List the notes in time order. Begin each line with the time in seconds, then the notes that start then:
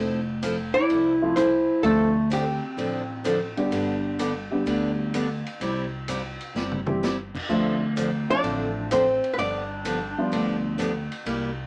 Already playing: F1 F3 C4 E4 A4
0.42 F3 C4 E4 A4, hi-hat pedal, ride
0.74 E4 D5
0.89 C2 F3 C4 E4 A4, ride
1.22 F3 A3 C4 E4 F4
1.36 F3 C4 E4 A4 C5, hi-hat pedal, ride
1.83 D2 D3 F3 A3 C4 D4 F4 A4, ride
2.30 D3 F3 C4 D4 G4 A4, hi-hat pedal, ride
2.77 A1 D3 F3 C4 D4 A4, ride
3.24 D3 F3 C4 D4 A4, hi-hat pedal, ride
3.57 D3 G3 B3 D4 G4, ride
3.71 G1 D3 G3 B3 D4 G4, ride
4.19 D3 G3 B3 D4 G4, hi-hat pedal, ride
4.51 D3 G3 B3 D4 G4
4.66 D2 D3 G3 B3 D4 G4, ride
5.14 D3 G3 B3 D4 G4, hi-hat pedal, ride
5.46 ride
5.60 C2 C3 G3 C4 E4 G4, ride
6.08 C3 G3 C4 E4 G4, hi-hat pedal, ride
6.41 ride
6.55 G1 C3 G3 C4 E4 G4, snare
6.72 mid tom
6.86 E3 G3 C4 E4 G4, mid tom
7.03 C3 G3 C4 E4 G4, snare, hi-hat pedal
7.35 kick, crash
7.49 D2 D3 F3 A3 C4 D4 F4 A4
7.96 D3 F3 C4 D4 A4, hi-hat pedal, ride
8.29 F3 A3 C4 D4 F4 D5
8.43 A1 D3 F3 C4 D4 A4, ride
8.91 D3 F3 C4 D4 A4 C5, hi-hat pedal, ride
9.24 ride
9.34 D3 D4 B4
9.38 G1 F3 B3 D4 G4 D5, ride
9.85 D3 F3 B3 D4 G4, hi-hat pedal, ride
10.18 F3 G3 B3 D4 F4
10.32 D2 D3 F3 B3 D4 G4, ride
10.78 D3 F3 B3 D4 G4, hi-hat pedal, ride
11.12 ride
11.26 C2 C3 G3 A#3 E4 G4, ride